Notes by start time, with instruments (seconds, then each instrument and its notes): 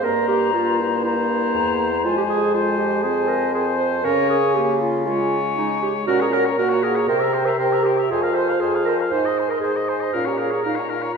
0.02 bassoon G2, french horn A#3, clarinet A#4, oboe C5, flute A#5
0.28 clarinet G4
0.54 french horn A#3, clarinet F4
0.79 clarinet E4
1.04 clarinet E4, oboe C5, flute A#5
1.54 bassoon E2
2.04 bassoon F2, french horn G#3, clarinet F4, oboe C5, flute G#5
2.17 clarinet G4
2.29 clarinet G#4
2.54 clarinet F4, oboe C5, flute G#5
2.79 clarinet G4
3.03 french horn C4, clarinet G#4, oboe C5
3.07 flute G#5
3.28 clarinet A#4
3.54 clarinet G#4, oboe C5, flute G#5
3.79 clarinet C5
4.04 bassoon C#3, french horn C#4, clarinet A#4, oboe C#5, flute G#5
4.30 clarinet G#4
4.54 french horn A#3, clarinet G4
4.81 clarinet F4
5.06 french horn G#3, clarinet F4, oboe C#5, flute G#5
5.57 french horn G#3, clarinet D#4
5.82 clarinet G4
6.07 bassoon A#2, french horn C#4, clarinet F#4, oboe A#4, flute F#5
6.21 clarinet G#4, oboe C#5, flute A#5
6.33 oboe A#4, clarinet A#4, flute F#5
6.45 oboe C#5, flute A#5
6.58 bassoon A#2, french horn A#3, clarinet F#4, oboe A#4, flute F#5
6.69 oboe C#5, flute A#5
6.83 clarinet G#4, oboe A#4, flute F#5
6.96 oboe C#5, flute A#5
7.08 bassoon C3, french horn G4, clarinet A#4, oboe C5, flute G5
7.20 oboe E5, flute A#5
7.34 oboe C5, flute G5
7.45 clarinet C5, oboe E5, flute A#5
7.58 bassoon C3, clarinet A#4, oboe C5, flute G5
7.73 oboe E5, flute A#5
7.83 clarinet G4, oboe C5, flute G5
7.98 oboe E5, flute A#5
8.10 bassoon F2, french horn F4, clarinet G#4, oboe C5, flute G#5
8.22 clarinet A#4, oboe F5, flute C6
8.33 clarinet C5, oboe C5
8.38 flute G#5
8.49 oboe F5, flute C6
8.61 bassoon F2, clarinet G#4, oboe C5, flute G#5
8.75 oboe F5, flute C6
8.85 clarinet A#4, oboe C5, flute G#5
9.01 oboe F5, flute C6
9.10 bassoon G#2, french horn D#4, clarinet C5, oboe C5, flute G#5
9.25 oboe D#5, flute C6
9.38 oboe C5, flute G#5
9.49 clarinet A#4, oboe D#5, flute C6
9.61 bassoon G#2, clarinet G#4, oboe C5, flute G#5
9.76 oboe D#5, flute C6
9.88 clarinet C5, oboe C5, flute G#5
10.00 oboe D#5, flute C6
10.12 bassoon A#2, french horn C#4, clarinet F4, oboe A#4, flute F5
10.25 clarinet G4, oboe C#5, flute A#5
10.38 clarinet G#4, oboe A#4, flute F5
10.51 oboe C#5, flute A#5
10.63 bassoon A#2, french horn D#4, clarinet D#4, oboe A#4
10.67 flute F5
10.76 oboe C#5, flute A#5
10.89 clarinet F4, oboe A#4
10.94 flute F5
11.02 oboe C#5, flute A#5